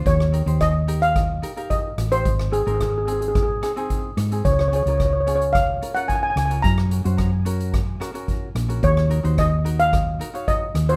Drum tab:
HH |x-xxx-xxx-xxx-xx|x-xxx-xxx-xxx-xx|x-xxx-xxx-xxx-xx|x-xxx-xxx-xxx-xx|
SD |-r--r---r-----r-|-r--r---r-r---r-|-r--r---r-----r-|-r--r---r-r---r-|
BD |o---o---o---o---|o---o---o---o---|o---o---o---o---|o---o---o---o---|

HH |x-xxx-xxx-xxx-xx|
SD |-r--r---r-----r-|
BD |o---o---o---o---|